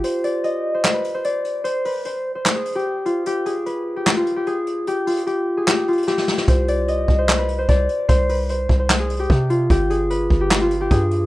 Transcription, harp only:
X:1
M:4/4
L:1/16
Q:1/4=149
K:Cm
V:1 name="Harp"
c2 d2 e3 c2 =B2 c d2 z2 | c2 =B2 c3 c2 A2 G3 F2 | G2 A2 =B3 G2 F2 G A2 z2 | G2 F2 G3 A G2 F2 G4 |
c2 d2 e3 c2 =B2 c d2 z2 | c2 =B2 c3 c2 A2 G3 F2 | G2 A2 =B3 G2 F2 G A2 z2 |]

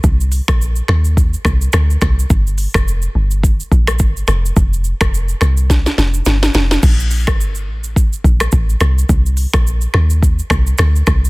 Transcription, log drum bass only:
X:1
M:4/4
L:1/16
Q:"Swing 16ths" 1/4=106
K:Gm
V:1 name="Log drum bass" clef=bass
C,,3 B,,,3 E,,4 C,,2 D,,2 C,,2 | G,,,3 F,,,3 G,,,4 B,,,2 G,,,2 F,,,2 | F,,,3 F,,,3 C,,4 F,,,2 G,,,2 F,,,2 | B,,,3 G,,,3 A,,,4 B,,,2 A,,,2 C,,2 |
C,,3 B,,,3 E,,4 C,,2 D,,2 C,,2 |]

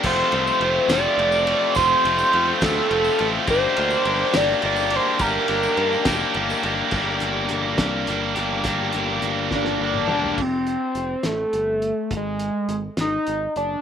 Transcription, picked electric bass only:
X:1
M:6/8
L:1/8
Q:3/8=70
K:Gmix
V:1 name="Picked electric bass" clef=bass
F,,, C,, F,,, F,,, F,,,2 | F,,, F,,, F,, D,, F,,, A,,, | G,,, D,, G,,, G,,, G,,,2 | G,,, G,,, G,, F,,, G,,, G,,, |
G,,, G,,, G,,, C,, G,,, G,,, | G,,, G,,, G,,, G,,, G,,, E,,, | F,,,2 F,,, A,,, G,,,2 | _A,,,2 A,,, A,,, A,,, ^F,,, |]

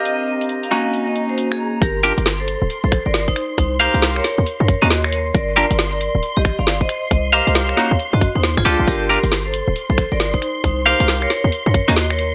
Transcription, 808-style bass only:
X:1
M:4/4
L:1/16
Q:"Swing 16ths" 1/4=136
K:Gm
V:1 name="808-style bass" clef=bass
z16 | G,,,3 G,,,4 D,,, z B,,, z G,,,3 z2 | C,,3 C,,3 z E,, z _G,, z E,,4- E,, | G,,,3 G,,,4 D,,, z B,,, z G,,,3 z2 |
C,,3 C,,3 z E,, z _G,, z E,,2 G,, _D,, B,,, | G,,,3 G,,,4 D,,, z B,,, z G,,,3 z2 | C,,3 C,,3 z E,, z _G,, z E,,4- E,, |]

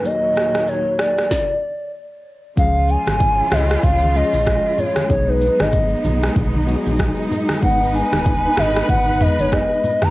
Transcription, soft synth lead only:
X:1
M:4/4
L:1/16
Q:"Swing 16ths" 1/4=95
K:Dbmix
V:1 name="Soft synth lead"
e4 d2 =d6 z4 | f2 a4 e2 f2 e4 d2 | d =B2 ^d4 z8 z | g2 a4 e2 g2 e d e3 b |]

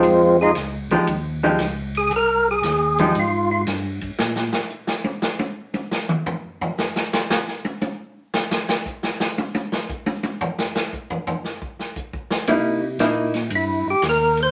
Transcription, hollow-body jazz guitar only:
X:1
M:4/4
L:1/8
Q:"Swing" 1/4=116
K:Fm
V:1 name="Hollow-body jazz guitar"
z3 [F,A,EG] z [F,A,EG] z2 | z3 [F,A,EG] z4 | z8 | z8 |
z8 | z8 | [B,^D=E] z [B,DE] z4 z |]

